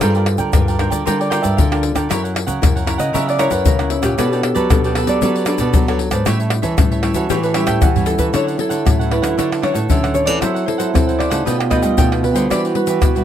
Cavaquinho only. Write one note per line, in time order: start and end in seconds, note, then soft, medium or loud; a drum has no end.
0.01 0.13 F4 medium
0.01 0.14 A#4 medium
0.01 0.14 D5 medium
0.01 0.14 G5 medium
0.15 0.26 A#4 soft
0.15 0.26 D5 soft
0.15 0.26 G5 soft
0.27 muted cavaquinho stroke soft
0.38 0.65 A#4 medium
0.38 0.65 D5 medium
0.38 0.64 G5 medium
0.68 0.78 A#4 soft
0.68 0.78 D5 soft
0.68 0.79 G5 medium
0.78 0.91 F4 medium
0.78 0.91 A#4 medium
0.78 0.90 D5 medium
0.78 0.89 G5 medium
0.90 1.05 A#4 medium
0.90 1.04 D5 medium
0.90 1.04 G5 medium
1.05 1.18 F4 medium
1.05 1.18 A#4 medium
1.05 1.18 D5 medium
1.05 1.19 G5 medium
1.20 1.30 A#4 soft
1.20 1.31 D5 soft
1.20 1.31 G5 soft
1.31 1.43 F4 medium
1.31 1.42 A#4 medium
1.31 1.42 D5 medium
1.31 1.41 G5 medium
1.42 1.69 A#4 medium
1.42 1.69 D5 medium
1.42 1.69 G5 medium
1.72 1.82 A#4 soft
1.72 1.82 D5 soft
1.72 1.83 G5 soft
1.83 muted cavaquinho stroke soft
1.95 2.08 A#4 soft
1.95 2.08 D5 soft
1.95 2.08 G5 medium
2.09 2.21 E4 medium
2.09 2.22 A#4 medium
2.09 2.22 C#5 medium
2.09 2.22 F#5 medium
2.24 2.34 A#4 soft
2.24 2.34 C#5 soft
2.24 2.34 F#5 soft
2.35 muted cavaquinho stroke soft
2.47 2.73 A#4 medium
2.47 2.73 C#5 medium
2.47 2.73 F#5 medium
2.76 2.85 A#4 soft
2.76 2.86 C#5 soft
2.76 2.86 F#5 medium
2.86 2.99 E4 soft
2.86 2.98 A#4 medium
2.86 2.97 C#5 medium
2.86 2.97 F#5 medium
2.98 3.12 A#4 medium
2.98 3.12 C#5 medium
2.98 3.11 F#5 medium
3.13 3.25 E4 medium
3.13 3.26 A#4 medium
3.13 3.26 C#5 medium
3.13 3.26 F#5 medium
3.27 3.38 A#4 soft
3.27 3.38 C#5 soft
3.27 3.38 F#5 soft
3.38 3.51 E4 medium
3.38 3.51 A#4 medium
3.38 3.50 C#5 medium
3.38 3.49 F#5 medium
3.51 3.77 A#4 medium
3.51 3.77 C#5 medium
3.51 3.77 F#5 medium
3.79 3.89 A#4 soft
3.79 3.90 C#5 soft
3.79 3.90 F#5 medium
4.02 4.16 A#4 soft
4.02 4.16 C#5 soft
4.02 4.16 F#5 medium
4.18 4.30 D4 medium
4.18 4.30 A4 medium
4.18 4.30 B4 medium
4.18 4.30 D5 medium
4.32 4.42 A4 soft
4.32 4.42 B4 soft
4.32 4.42 D5 medium
4.55 4.82 A4 medium
4.55 4.81 B4 medium
4.55 4.81 D5 medium
4.84 4.95 A4 soft
4.84 4.95 B4 medium
4.84 4.95 D5 medium
4.96 5.08 D4 medium
4.96 5.08 A4 medium
4.96 5.07 B4 medium
4.96 5.06 D5 medium
5.07 5.21 A4 medium
5.07 5.21 B4 medium
5.07 5.20 D5 medium
5.23 5.34 D4 medium
5.23 5.35 A4 medium
5.23 5.35 B4 medium
5.23 5.35 D5 medium
5.36 5.47 A4 soft
5.36 5.47 B4 soft
5.36 5.48 D5 soft
5.48 5.60 D4 medium
5.48 5.60 A4 medium
5.48 5.60 B4 medium
5.48 5.59 D5 medium
5.60 5.86 A4 medium
5.60 5.86 B4 medium
5.60 5.85 D5 medium
5.88 5.99 A4 soft
5.88 5.99 B4 soft
5.88 5.99 D5 medium
6.00 muted cavaquinho stroke soft
6.11 6.25 A4 soft
6.11 6.25 B4 soft
6.11 6.24 D5 medium
6.26 6.38 G4 medium
6.26 6.38 A4 medium
6.26 6.38 C#5 medium
6.26 6.38 E5 medium
6.40 6.50 A4 soft
6.40 6.50 C#5 soft
6.40 6.50 E5 soft
6.51 muted cavaquinho stroke soft
6.62 6.89 A4 medium
6.62 6.89 C#5 medium
6.62 6.88 E5 medium
6.91 7.02 A4 soft
6.91 7.02 C#5 soft
6.91 7.03 E5 soft
7.02 7.15 G4 soft
7.02 7.15 A4 medium
7.02 7.14 C#5 medium
7.02 7.13 E5 medium
7.15 7.28 A4 medium
7.15 7.28 C#5 medium
7.15 7.28 E5 medium
7.30 7.42 G4 medium
7.30 7.42 A4 medium
7.30 7.42 C#5 medium
7.30 7.43 E5 medium
7.44 7.54 A4 soft
7.44 7.54 C#5 soft
7.44 7.55 E5 medium
7.55 7.67 G4 medium
7.55 7.68 A4 medium
7.55 7.67 C#5 medium
7.55 7.66 E5 medium
7.67 7.94 A4 medium
7.67 7.93 C#5 medium
7.67 7.93 E5 medium
7.96 8.06 A4 soft
7.96 8.06 C#5 soft
7.96 8.07 E5 medium
8.07 muted cavaquinho stroke soft
8.18 8.32 A4 soft
8.18 8.32 C#5 soft
8.18 8.32 E5 medium
8.33 8.45 D4 medium
8.33 8.46 A4 medium
8.33 8.46 C#5 medium
8.33 8.45 F#5 medium
8.47 8.57 A4 soft
8.47 8.57 C#5 soft
8.47 8.57 F#5 soft
8.58 muted cavaquinho stroke soft
8.69 8.97 A4 medium
8.69 8.96 C#5 medium
8.69 8.96 F#5 medium
8.99 9.10 A4 soft
8.99 9.10 C#5 soft
8.99 9.11 F#5 soft
9.11 9.23 D4 soft
9.11 9.22 A4 soft
9.11 9.22 C#5 soft
9.11 9.21 F#5 medium
9.22 9.36 A4 medium
9.22 9.36 C#5 medium
9.22 9.35 F#5 medium
9.37 9.50 D4 medium
9.37 9.50 A4 medium
9.37 9.50 C#5 medium
9.37 9.50 F#5 medium
9.51 9.61 A4 soft
9.51 9.62 C#5 soft
9.51 9.62 F#5 soft
9.62 9.75 D4 medium
9.62 9.74 A4 medium
9.62 9.73 C#5 medium
9.62 9.72 F#5 medium
9.73 10.01 A4 medium
9.73 10.00 C#5 medium
9.73 10.00 F#5 medium
10.03 10.13 A4 soft
10.03 10.13 C#5 soft
10.03 10.14 F#5 soft
10.26 10.40 A4 soft
10.26 10.40 C#5 soft
10.26 10.39 F#5 soft
10.41 10.53 E4 medium
10.41 10.54 A4 medium
10.41 10.54 C5 medium
10.41 10.53 F#5 medium
10.54 10.65 A4 soft
10.54 10.65 C5 soft
10.54 10.65 F#5 soft
10.66 muted cavaquinho stroke soft
10.78 11.05 A4 medium
10.78 11.05 C5 medium
10.78 11.04 F#5 medium
11.07 11.17 A4 soft
11.07 11.18 C5 soft
11.07 11.19 F#5 soft
11.18 11.31 E4 soft
11.18 11.30 A4 soft
11.18 11.29 C5 soft
11.18 11.29 F#5 medium
11.30 11.44 A4 medium
11.30 11.44 C5 medium
11.30 11.43 F#5 medium
11.45 11.57 A4 medium
11.45 11.58 B4 medium
11.45 11.58 D#5 medium
11.45 11.57 G5 medium
11.59 11.70 B4 soft
11.59 11.70 D#5 soft
11.59 11.71 G5 soft
11.70 11.83 A4 medium
11.70 11.82 B4 medium
11.70 11.82 D#5 medium
11.70 11.81 G5 medium
11.82 12.09 B4 medium
11.82 12.09 D#5 medium
11.82 12.08 G5 medium
12.12 12.22 B4 soft
12.12 12.22 D#5 soft
12.12 12.22 G5 soft
12.23 muted cavaquinho stroke soft
12.34 12.48 B4 soft
12.34 12.48 D#5 soft
12.34 12.48 G5 soft
12.50 12.62 D4 medium
12.50 12.62 G4 medium
12.50 12.62 B4 medium
12.50 12.63 E5 medium
12.64 12.75 G4 soft
12.64 12.75 B4 soft
12.64 12.75 E5 soft
12.76 muted cavaquinho stroke soft
12.88 13.14 G4 medium
12.88 13.14 B4 medium
12.88 13.13 E5 medium
13.17 13.24 G4 soft
13.17 13.24 B4 soft
13.17 13.24 E5 soft